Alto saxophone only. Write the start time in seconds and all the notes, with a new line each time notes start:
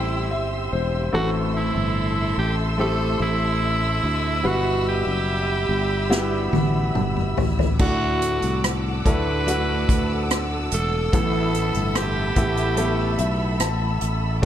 Already playing: E4
1.15 F#4
1.57 E4
2.39 G4
2.80 A4
3.22 E4
4.47 F#4
4.89 G4
7.81 F#4
9.07 B4
10.74 A4
11.15 A4
11.97 G4